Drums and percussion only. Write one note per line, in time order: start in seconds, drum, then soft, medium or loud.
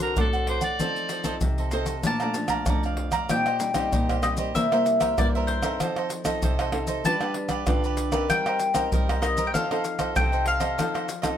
0.17 pandeiro medium
0.17 maracas medium
0.17 surdo loud
0.33 pandeiro soft
0.33 maracas soft
0.47 pandeiro medium
0.61 pandeiro medium
0.61 maracas medium
0.61 surdo soft
0.80 pandeiro medium
0.80 maracas medium
0.80 surdo medium
0.96 pandeiro soft
0.96 maracas soft
1.09 pandeiro medium
1.09 maracas medium
1.24 pandeiro medium
1.24 maracas medium
1.24 surdo soft
1.41 pandeiro medium
1.41 maracas medium
1.41 surdo medium
1.58 pandeiro soft
1.58 maracas soft
1.58 surdo soft
1.71 pandeiro medium
1.71 maracas medium
1.86 pandeiro medium
1.86 maracas medium
2.03 pandeiro medium
2.03 maracas medium
2.03 surdo medium
2.20 pandeiro soft
2.20 tamborim medium
2.20 maracas soft
2.34 pandeiro medium
2.34 maracas medium
2.48 pandeiro medium
2.48 tamborim medium
2.48 maracas medium
2.48 surdo soft
2.66 pandeiro medium
2.66 tamborim medium
2.66 maracas medium
2.66 surdo loud
2.83 pandeiro soft
2.83 maracas soft
2.97 pandeiro medium
3.12 pandeiro medium
3.12 tamborim medium
3.12 maracas medium
3.12 surdo soft
3.29 pandeiro medium
3.29 tamborim medium
3.29 maracas medium
3.29 surdo medium
3.46 pandeiro soft
3.46 tamborim medium
3.46 maracas soft
3.60 pandeiro medium
3.60 maracas medium
3.74 pandeiro medium
3.74 tamborim medium
3.74 maracas medium
3.74 surdo soft
3.93 pandeiro medium
3.93 maracas medium
3.93 surdo medium
4.09 pandeiro soft
4.09 tamborim medium
4.09 maracas soft
4.09 surdo soft
4.23 pandeiro medium
4.23 tamborim medium
4.23 maracas medium
4.37 pandeiro medium
4.37 maracas medium
4.56 pandeiro medium
4.56 maracas medium
4.56 surdo medium
4.72 pandeiro soft
4.72 tamborim medium
4.72 maracas soft
4.86 pandeiro medium
4.86 maracas medium
5.01 pandeiro medium
5.01 tamborim medium
5.01 maracas medium
5.01 surdo soft
5.18 pandeiro medium
5.18 tamborim medium
5.18 maracas medium
5.18 surdo loud
5.35 pandeiro soft
5.35 maracas soft
5.48 pandeiro medium
5.62 pandeiro medium
5.62 tamborim medium
5.62 maracas medium
5.62 surdo soft
5.80 pandeiro medium
5.80 tamborim medium
5.80 maracas medium
5.80 surdo medium
5.96 pandeiro soft
5.96 tamborim medium
5.96 maracas soft
6.10 pandeiro medium
6.10 maracas medium
6.25 pandeiro medium
6.25 tamborim medium
6.25 maracas medium
6.25 surdo soft
6.42 pandeiro medium
6.42 maracas medium
6.42 surdo medium
6.59 pandeiro soft
6.59 tamborim medium
6.59 maracas soft
6.59 surdo soft
6.72 pandeiro medium
6.72 tamborim medium
6.87 pandeiro medium
6.87 maracas medium
7.05 pandeiro medium
7.05 maracas medium
7.05 surdo medium
7.21 pandeiro soft
7.21 tamborim medium
7.21 maracas soft
7.34 pandeiro medium
7.49 pandeiro medium
7.49 tamborim medium
7.49 maracas medium
7.49 surdo soft
7.67 pandeiro medium
7.67 tamborim medium
7.67 maracas medium
7.67 surdo loud
7.84 pandeiro soft
7.84 maracas soft
7.97 pandeiro medium
7.97 maracas medium
8.12 pandeiro medium
8.12 tamborim medium
8.12 maracas medium
8.12 surdo soft
8.30 pandeiro medium
8.30 tamborim medium
8.30 maracas medium
8.30 surdo medium
8.46 pandeiro soft
8.46 tamborim medium
8.46 maracas soft
8.59 pandeiro medium
8.59 maracas medium
8.75 pandeiro medium
8.75 tamborim medium
8.75 maracas medium
8.75 surdo soft
8.92 pandeiro medium
8.92 maracas medium
8.92 surdo loud
9.09 pandeiro soft
9.09 tamborim loud
9.09 maracas soft
9.09 surdo soft
9.23 pandeiro medium
9.23 tamborim medium
9.23 maracas medium
9.37 pandeiro medium
9.37 maracas medium
9.55 pandeiro medium
9.55 maracas medium
9.55 surdo medium
9.71 pandeiro soft
9.71 tamborim medium
9.71 maracas soft
9.84 pandeiro medium
9.84 maracas medium
9.99 pandeiro medium
9.99 tamborim medium
9.99 maracas medium
9.99 surdo soft
10.16 pandeiro medium
10.16 tamborim medium
10.16 maracas medium
10.16 surdo loud
10.33 pandeiro soft
10.33 maracas soft
10.46 pandeiro medium
10.61 pandeiro medium
10.61 tamborim medium
10.61 maracas medium
10.61 surdo soft
10.79 pandeiro medium
10.79 tamborim medium
10.79 maracas medium
10.79 surdo medium
10.95 pandeiro soft
10.95 tamborim medium
10.95 maracas soft
11.09 pandeiro medium
11.09 maracas medium
11.23 pandeiro medium
11.23 tamborim medium
11.23 maracas medium
11.23 surdo soft